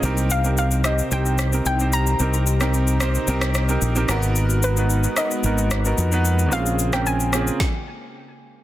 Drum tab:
SH |xxxxxxxxxxxxxxxx|xxxxxxxxxxxxxxxx|xxxxxxxxxxxxxxxx|xxxxxxxx--------|
SD |------r---r-----|---r--r--rr---r-|------r---r-----|---r--r-o-------|
BD |----------------|----------------|----------------|--------o-------|